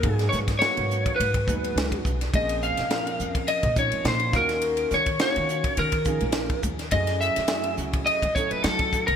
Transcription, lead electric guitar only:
0.00 0.15 A#4 medium
0.15 0.27 G#4 medium
0.29 0.37 C#5 medium
0.59 1.19 C#5 medium
1.16 1.99 B4 medium
2.35 2.64 D#5 medium
2.63 3.51 F5 loud
3.48 3.78 D#5 loud
3.79 4.07 C#5 medium
4.08 4.36 C5 medium
4.36 4.94 A#4 medium
4.94 5.20 C#5 medium
5.21 5.80 C#5 medium
5.79 6.60 A#4 medium
6.92 7.19 D#5 medium
7.21 7.74 E5 loud
8.06 8.33 D#5 medium
8.35 8.51 C#5 medium
8.51 8.63 B4 medium
8.63 9.06 A4 medium
9.07 9.16 A#4 medium

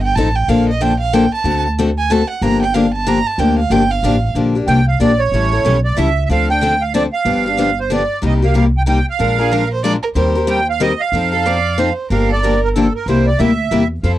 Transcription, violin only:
0.03 0.17 G5 loud
0.15 0.37 A5 medium
0.35 0.50 G5 medium
0.49 0.68 F5 medium
0.69 0.83 D#5 medium
0.82 0.99 G5 loud
1.00 1.15 F5 medium
1.13 1.33 G5 loud
1.34 1.64 A5 loud
1.98 2.12 G#5 medium
2.11 2.29 A5 loud
2.30 2.44 F#5 medium
2.42 2.62 A#5 loud
2.62 2.76 G5 loud
2.74 2.93 F5 medium
2.94 3.09 A5 loud
3.08 3.28 A#5 loud
3.27 3.40 A5 medium
3.39 3.58 G5 medium
3.59 3.73 F5 medium
3.71 3.93 G5 loud
3.91 4.29 F5 loud
9.39 9.53 G#4 medium
9.52 9.71 A#4 medium
9.73 9.83 C5 medium
9.84 9.93 D5 loud
10.03 10.09 A#4 medium
10.15 10.40 C5 medium
11.33 11.48 A4 medium
11.46 11.81 D5 loud
11.79 12.11 C5 medium
12.11 12.31 A#4 medium
12.30 12.42 A4 medium
12.43 12.67 A#4 medium

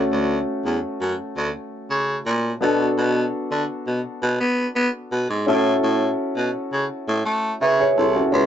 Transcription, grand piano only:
0.00 2.57 A3 medium
0.00 2.57 C#4 medium
0.00 2.58 F#4 medium
0.00 2.58 A4 medium
2.61 5.43 B3 medium
2.61 5.43 D4 medium
2.61 5.44 F#4 medium
2.61 5.44 A4 medium
5.46 7.57 C#4 medium
5.46 7.57 E4 medium
5.46 7.58 F#4 medium
5.46 7.58 A4 medium
7.62 7.79 B4 medium
7.62 7.79 E5 medium
7.80 7.97 G#4 medium
7.80 7.97 C#5 medium
7.98 8.15 E4 medium
7.98 8.14 A4 medium
8.16 8.30 C#4 soft
8.16 8.46 F#4 medium
8.32 8.46 C#4 medium
8.32 8.46 E4 medium
8.32 8.46 G#4 medium
8.32 8.46 B4 medium

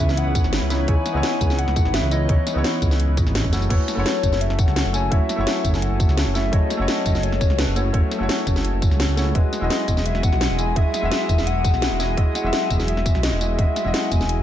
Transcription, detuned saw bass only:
0.00 0.25 C#2 loud
0.27 0.42 C#2 loud
0.44 0.60 G#1 medium
0.62 0.87 C#2 medium
0.88 0.96 C#2 loud
1.15 1.23 C#2 medium
1.41 1.66 C#2 medium
1.68 1.84 C#2 loud
1.85 2.01 G#1 medium
2.03 2.28 C#2 medium
2.29 2.37 C#2 loud
2.56 2.64 C#2 medium
2.82 3.08 C#2 loud
3.09 3.25 C#2 loud
3.27 3.42 G#1 medium
3.44 3.69 F#1 medium
3.70 3.79 F#1 medium
3.97 4.05 F#1 medium
4.23 4.49 F#1 loud
4.50 4.66 F#1 loud
4.68 4.84 C#2 medium
4.86 5.10 F#1 medium
5.12 5.20 F#1 loud
5.38 5.46 F#1 medium
5.65 5.90 F#1 loud
5.91 6.07 F#1 loud
6.09 6.25 C#2 medium
6.27 6.51 F#1 medium
6.53 6.61 F#1 loud
6.80 6.87 F#1 medium
7.06 7.31 F#1 medium
7.32 7.48 F#1 loud
7.50 7.66 C#2 medium
7.68 7.93 F#1 medium
7.94 8.02 F#1 loud
8.21 8.28 F#1 medium
8.47 8.72 F#1 medium
8.74 8.90 F#1 loud
8.91 9.07 C#2 medium
9.09 9.34 C#2 loud
9.35 9.43 E1 loud
9.62 9.70 E1 medium
9.88 10.13 E1 medium
10.15 10.31 E1 loud
10.32 10.48 B1 medium
10.50 10.75 E1 medium
10.76 10.85 E1 loud
11.03 11.11 E1 medium
11.29 11.55 E1 loud
11.56 11.72 E1 loud
11.74 11.90 B1 medium
11.91 12.16 E1 medium
12.18 12.26 E1 loud
12.44 12.52 E1 medium
12.70 12.96 E1 loud
12.97 13.13 E1 loud
13.15 13.31 B1 medium
13.32 13.57 E1 medium
13.59 13.67 E1 loud
13.85 13.93 E1 medium
14.12 14.40 E1 medium
14.38 14.43 B1 medium

